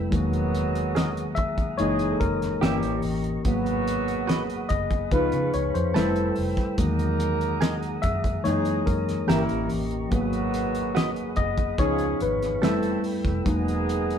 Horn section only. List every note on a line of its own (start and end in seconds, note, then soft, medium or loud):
0.13 1.35 D#3 medium
0.13 1.35 F#3 medium
0.13 1.35 B3 medium
0.13 1.35 F#4 medium
1.79 2.20 E3 medium
1.79 2.20 G#3 medium
1.79 2.20 D#4 medium
1.79 2.20 G#4 medium
2.63 3.03 E3 medium
2.63 3.03 G3 medium
2.63 3.03 C#4 medium
2.63 3.03 G4 medium
3.46 4.68 D#3 medium
3.46 4.68 F#3 medium
3.46 4.68 B3 medium
3.46 4.68 F#4 medium
5.12 5.53 G#3 medium
5.12 5.53 B3 medium
5.12 5.53 F4 medium
5.12 5.53 B4 medium
5.95 6.36 E3 medium
5.95 6.36 A3 medium
5.95 6.36 C4 medium
5.95 6.36 A4 medium
6.78 8.01 F#3 medium
6.78 8.01 A#3 medium
6.78 8.01 D#4 medium
6.78 8.01 A#4 medium
8.45 8.86 E3 medium
8.45 8.86 G#3 medium
8.45 8.86 D#4 medium
8.45 8.86 G#4 medium
9.29 9.70 G3 medium
9.29 9.70 A#3 medium
9.29 9.70 E4 medium
9.29 9.70 A#4 medium
10.13 11.35 D#3 medium
10.13 11.35 F#3 medium
10.13 11.35 B3 medium
10.13 11.35 F#4 medium
11.79 12.20 F3 medium
11.79 12.20 G#3 medium
11.79 12.20 C#4 medium
11.79 12.20 G#4 medium
12.62 13.03 E3 medium
12.62 13.03 A3 medium
12.62 13.03 C4 medium
12.62 13.03 A4 medium
13.46 14.19 D#3 medium
13.46 14.19 G#3 medium
13.46 14.19 B3 medium
13.46 14.19 G#4 medium